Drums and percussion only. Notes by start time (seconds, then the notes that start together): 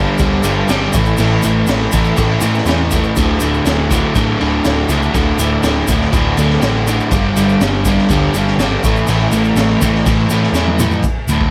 0.18 kick, crash, shaker
0.43 crash, shaker
0.68 snare, crash, shaker
0.93 kick, crash, shaker
1.06 shaker
1.17 crash, shaker
1.43 crash, shaker
1.67 snare, crash, shaker
1.92 kick, crash, shaker
2.04 shaker
2.17 kick, crash, shaker
2.41 crash, shaker
2.55 snare, shaker
2.66 snare, crash, shaker
2.91 kick, crash, shaker
3.03 shaker
3.16 kick, crash, shaker
3.40 crash, shaker
3.54 shaker
3.66 snare, crash, shaker
3.90 kick, crash, shaker
4.15 kick, crash, shaker
4.41 crash
4.64 snare, crash, shaker
4.89 crash, shaker
5.02 shaker
5.14 kick, crash, shaker
5.39 crash, shaker
5.63 snare, crash, shaker
5.88 kick, crash, shaker
6.01 snare
6.13 kick, crash, shaker
6.37 crash, shaker
6.50 snare
6.62 snare, crash, shaker
6.87 crash, shaker
7.00 shaker
7.11 kick, crash, shaker
7.36 crash, shaker
7.49 shaker
7.61 snare, crash, shaker
7.85 kick, crash, shaker
7.98 snare
8.09 kick, crash, shaker
8.34 crash, shaker
8.47 snare
8.59 snare, crash, shaker
8.84 kick, crash, shaker
8.96 shaker
9.07 crash, shaker
9.32 crash, shaker
9.44 shaker
9.56 snare, crash, shaker
9.81 kick, crash, shaker
9.95 snare
10.06 kick, crash, shaker
10.30 crash, shaker
10.43 snare
10.54 snare, shaker
10.68 high tom
10.79 mid tom, shaker
10.91 floor tom, shaker
11.02 kick, crash, shaker
11.28 shaker
11.41 kick